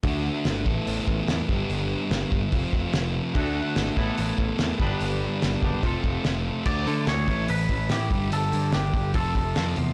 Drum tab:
CC |--------|--------|--------|--------|
HH |o-o-o-o-|o-o-o-o-|o-o-o-o-|o-o-o-o-|
SD |--o---o-|--o---o-|--o---o-|--o---o-|
BD |o--o-o-o|---ooo--|o--o-o-o|---ooo--|

CC |x-------|--------|
HH |-ooooooo|oooooooo|
SD |--o---o-|--o---o-|
BD |o--o-o-o|---ooo--|